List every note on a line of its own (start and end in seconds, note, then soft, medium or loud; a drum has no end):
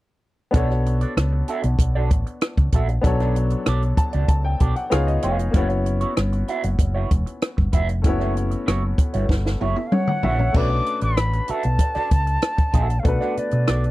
0.51 1.03 B1 medium
0.51 2.99 B3 medium
0.51 2.99 D4 medium
0.51 0.69 D4 medium
0.51 3.00 F#4 medium
0.51 0.69 F#4 medium
0.51 0.69 A4 medium
0.51 3.00 A4 medium
0.51 kick loud
0.51 closed hi-hat medium
0.55 3.01 C#5 medium
0.55 0.68 D5 medium
0.69 muted clean electric guitar stroke soft
0.69 cross-stick soft
0.86 muted clean electric guitar stroke soft
0.86 closed hi-hat medium
1.01 1.14 D4 soft
1.01 1.13 F#4 soft
1.01 1.13 A4 soft
1.01 1.13 D5 soft
1.01 closed hi-hat soft
1.17 1.41 C#2 medium
1.17 muted clean electric guitar stroke soft
1.17 cross-stick medium
1.17 closed hi-hat medium
1.33 muted clean electric guitar stroke soft
1.48 1.63 D4 medium
1.48 1.63 F#4 medium
1.48 1.63 A4 medium
1.48 1.63 E5 medium
1.48 closed hi-hat medium
1.63 1.76 B1 medium
1.63 muted clean electric guitar stroke soft
1.63 closed hi-hat soft
1.79 2.11 B1 medium
1.79 muted clean electric guitar stroke soft
1.79 kick medium
1.79 closed hi-hat medium
1.95 2.10 D4 medium
1.95 2.10 F#4 medium
1.95 2.10 A4 medium
1.95 2.10 D5 medium
2.11 2.23 A1 medium
2.11 muted clean electric guitar stroke soft
2.11 kick medium
2.11 closed hi-hat medium
2.27 muted clean electric guitar stroke soft
2.27 closed hi-hat soft
2.41 cross-stick loud
2.41 closed hi-hat medium
2.57 2.70 C#2 medium
2.57 muted clean electric guitar stroke soft
2.57 kick medium
2.57 closed hi-hat soft
2.72 2.97 A#1 medium
2.72 2.88 D4 medium
2.72 2.88 F#4 medium
2.72 2.89 A4 medium
2.72 2.89 E5 medium
2.72 kick medium
2.72 closed hi-hat medium
2.89 muted clean electric guitar stroke soft
2.89 closed hi-hat soft
3.01 3.53 B1 medium
3.01 4.88 F#3 medium
3.01 4.87 B3 medium
3.01 4.87 D4 medium
3.01 muted clean electric guitar stroke soft
3.01 kick loud
3.01 closed hi-hat medium
3.05 4.89 A4 medium
3.05 4.89 C#5 medium
3.20 3.36 D4 soft
3.20 3.36 F#4 medium
3.20 3.35 A4 medium
3.20 3.35 D5 medium
3.20 cross-stick soft
3.20 closed hi-hat soft
3.36 muted clean electric guitar stroke soft
3.36 closed hi-hat medium
3.50 muted clean electric guitar stroke soft
3.50 closed hi-hat soft
3.66 3.91 B1 medium
3.66 3.82 D4 medium
3.66 3.82 F#4 medium
3.66 3.82 A4 medium
3.66 3.83 D5 medium
3.66 cross-stick medium
3.66 closed hi-hat medium
3.83 closed hi-hat soft
3.97 4.27 A5 medium
3.97 muted clean electric guitar stroke soft
3.97 kick medium
3.97 closed hi-hat medium
4.13 4.26 C#2 medium
4.13 4.26 D4 soft
4.13 4.26 F#4 soft
4.13 4.25 A4 soft
4.13 4.25 D5 medium
4.13 closed hi-hat soft
4.28 4.53 C#2 medium
4.28 4.43 A5 medium
4.28 kick medium
4.28 closed hi-hat medium
4.45 4.74 G5 medium
4.45 muted clean electric guitar stroke soft
4.60 4.73 B1 medium
4.60 4.75 D4 medium
4.60 4.75 F#4 medium
4.60 4.76 A4 medium
4.60 4.75 D5 medium
4.60 kick medium
4.60 closed hi-hat medium
4.76 4.90 F#5 medium
4.76 muted clean electric guitar stroke soft
4.76 closed hi-hat soft
4.90 5.17 C#2 medium
4.90 5.53 B3 medium
4.90 5.54 D#4 medium
4.90 5.54 F4 medium
4.90 5.54 G#4 medium
4.90 5.21 C#5 medium
4.90 5.06 F5 medium
4.90 muted clean electric guitar stroke soft
4.90 cross-stick loud
4.90 closed hi-hat medium
5.07 5.22 D#5 medium
5.07 muted clean electric guitar stroke soft
5.07 closed hi-hat soft
5.22 5.48 F1 medium
5.22 5.43 B3 medium
5.22 5.38 F4 medium
5.22 5.38 G#4 medium
5.22 5.52 C#5 medium
5.22 5.37 C#5 medium
5.22 closed hi-hat medium
5.38 muted clean electric guitar stroke soft
5.38 closed hi-hat soft
5.51 6.03 F#1 medium
5.51 5.59 A#3 medium
5.51 5.69 B3 medium
5.51 8.00 C#4 medium
5.51 8.00 E4 medium
5.51 5.69 E4 medium
5.51 kick loud
5.51 closed hi-hat medium
5.55 8.02 B3 medium
5.55 5.69 F#4 medium
5.55 8.01 F#4 medium
5.55 5.68 C#5 medium
5.55 8.02 C#5 medium
5.70 muted clean electric guitar stroke soft
5.70 closed hi-hat soft
5.85 muted clean electric guitar stroke soft
5.85 closed hi-hat medium
6.01 6.14 B3 soft
6.01 6.13 E4 soft
6.01 6.13 F#4 soft
6.01 6.13 C#5 medium
6.01 closed hi-hat soft
6.16 6.42 G1 medium
6.16 muted clean electric guitar stroke soft
6.16 cross-stick medium
6.16 closed hi-hat medium
6.33 muted clean electric guitar stroke soft
6.33 closed hi-hat soft
6.48 6.63 B3 medium
6.48 6.63 E4 medium
6.48 6.64 F#4 medium
6.48 6.64 E5 medium
6.48 closed hi-hat medium
6.63 6.76 F#1 medium
6.63 muted clean electric guitar stroke soft
6.63 closed hi-hat medium
6.79 7.04 F#1 medium
6.79 muted clean electric guitar stroke soft
6.79 kick medium
6.79 closed hi-hat medium
6.94 7.10 B3 medium
6.94 7.10 E4 medium
6.94 7.10 F#4 medium
6.94 7.10 C#5 medium
7.11 7.23 E1 medium
7.11 muted clean electric guitar stroke soft
7.11 kick medium
7.11 closed hi-hat medium
7.26 muted clean electric guitar stroke soft
7.26 closed hi-hat soft
7.42 cross-stick loud
7.42 closed hi-hat medium
7.57 7.70 G1 medium
7.57 muted clean electric guitar stroke soft
7.57 kick medium
7.73 8.05 F1 medium
7.73 7.88 B3 medium
7.73 7.88 E4 medium
7.73 7.88 F#4 medium
7.73 7.89 E5 medium
7.73 kick medium
7.73 closed hi-hat medium
7.89 muted clean electric guitar stroke soft
7.89 closed hi-hat soft
8.02 8.54 F#1 medium
8.02 8.10 A3 soft
8.02 10.50 C#4 medium
8.02 10.51 E4 medium
8.02 muted clean electric guitar stroke soft
8.02 kick loud
8.02 closed hi-hat medium
8.06 10.53 B3 medium
8.06 10.52 F#4 medium
8.06 9.90 C#5 medium
8.20 8.34 B3 soft
8.20 8.34 E4 medium
8.20 8.35 F#4 medium
8.20 8.35 C#5 medium
8.20 cross-stick soft
8.35 muted clean electric guitar stroke soft
8.35 closed hi-hat medium
8.51 muted clean electric guitar stroke soft
8.51 closed hi-hat soft
8.66 8.92 F#1 medium
8.66 8.81 B3 medium
8.66 8.82 E4 medium
8.66 8.82 F#4 medium
8.66 8.82 C#5 medium
8.66 cross-stick medium
8.66 closed hi-hat medium
8.98 muted clean electric guitar stroke soft
8.98 kick medium
8.98 closed hi-hat medium
9.13 9.27 G1 medium
9.13 9.26 B3 soft
9.13 9.26 E4 soft
9.13 9.26 F#4 soft
9.13 9.25 C#5 soft
9.13 closed hi-hat soft
9.29 9.54 G1 medium
9.29 muted clean electric guitar stroke soft
9.29 kick medium
9.29 snare medium
9.45 muted clean electric guitar stroke soft
9.45 snare soft
9.60 9.73 F#1 medium
9.60 9.76 B3 medium
9.60 9.76 E4 medium
9.60 9.76 F#4 medium
9.60 9.76 C#5 medium
9.60 9.88 E5 medium
9.60 high tom medium
9.76 muted clean electric guitar stroke soft
9.76 high tom medium
9.87 9.96 F5 medium
9.92 10.07 C#5 medium
9.92 10.58 F#5 medium
9.92 muted clean electric guitar stroke soft
9.92 mid tom medium
10.07 10.23 F#5 medium
10.07 muted clean electric guitar stroke soft
10.07 mid tom medium
10.23 10.48 A#1 medium
10.23 10.38 B3 medium
10.23 10.39 E4 medium
10.23 10.38 F#4 medium
10.23 10.38 C#5 medium
10.23 10.39 E5 medium
10.23 floor tom medium
10.39 10.69 C#5 medium
10.39 muted clean electric guitar stroke soft
10.39 floor tom medium
10.52 10.79 B1 medium
10.52 13.00 A3 medium
10.52 13.01 C#4 soft
10.52 10.69 D4 medium
10.52 13.01 D4 soft
10.52 10.70 F#4 medium
10.52 13.02 F#4 soft
10.52 10.70 A4 medium
10.52 kick loud
10.52 crash medium
10.56 13.03 B4 medium
10.56 10.69 D5 medium
10.56 11.03 D6 loud
10.70 muted clean electric guitar stroke soft
10.86 muted clean electric guitar stroke soft
10.86 closed hi-hat medium
11.01 11.39 A1 medium
11.01 11.15 D4 soft
11.01 11.14 F#4 soft
11.01 11.14 A4 soft
11.01 11.14 D5 soft
11.01 11.52 B5 medium
11.01 closed hi-hat soft
11.17 muted clean electric guitar stroke soft
11.17 cross-stick medium
11.17 closed hi-hat medium
11.33 muted clean electric guitar stroke soft
11.33 closed hi-hat soft
11.48 11.63 D4 medium
11.48 11.64 F#4 medium
11.48 11.64 A4 medium
11.48 11.64 E5 medium
11.48 13.01 A5 medium
11.48 muted fingered electric bass stroke soft
11.48 closed hi-hat medium
11.63 11.77 B1 medium
11.63 muted clean electric guitar stroke soft
11.63 closed hi-hat soft
11.79 muted clean electric guitar stroke soft
11.79 kick medium
11.79 closed hi-hat medium
11.95 12.10 D4 medium
11.95 12.10 F#4 medium
11.95 12.11 A4 medium
11.95 12.10 D5 medium
11.95 muted fingered electric bass stroke soft
11.95 cross-stick soft
11.95 closed hi-hat soft
12.11 12.36 C#2 medium
12.11 muted clean electric guitar stroke soft
12.11 kick medium
12.11 closed hi-hat medium
12.27 muted clean electric guitar stroke soft
12.27 closed hi-hat soft
12.42 cross-stick loud
12.42 closed hi-hat medium
12.57 muted clean electric guitar stroke soft
12.57 kick medium
12.57 closed hi-hat soft
12.73 12.98 A#1 medium
12.73 12.93 D4 medium
12.73 12.89 F#4 medium
12.73 12.88 A4 medium
12.73 12.88 E5 medium
12.73 kick medium
12.73 closed hi-hat medium
12.89 muted clean electric guitar stroke soft
12.89 closed hi-hat soft
12.99 13.91 A3 medium
12.99 13.09 F5 medium
13.04 13.18 B1 medium
13.04 13.91 B3 soft
13.04 13.91 D4 soft
13.04 13.91 F#4 soft
13.04 13.40 F#5 medium
13.04 muted clean electric guitar stroke soft
13.04 kick loud
13.04 closed hi-hat medium
13.08 13.91 B4 medium
13.21 13.35 D4 medium
13.21 13.35 F#4 medium
13.21 13.36 A4 medium
13.21 13.36 D5 medium
13.21 cross-stick soft
13.36 13.91 D5 medium
13.36 muted clean electric guitar stroke soft
13.36 muted fingered electric bass stroke soft
13.36 closed hi-hat medium
13.51 13.65 B2 medium
13.51 muted clean electric guitar stroke soft
13.51 closed hi-hat soft
13.68 13.91 B1 medium
13.68 13.83 D4 medium
13.68 13.83 F#4 medium
13.68 13.84 A4 medium
13.68 13.84 D5 medium
13.68 cross-stick medium
13.68 closed hi-hat medium
13.84 closed hi-hat soft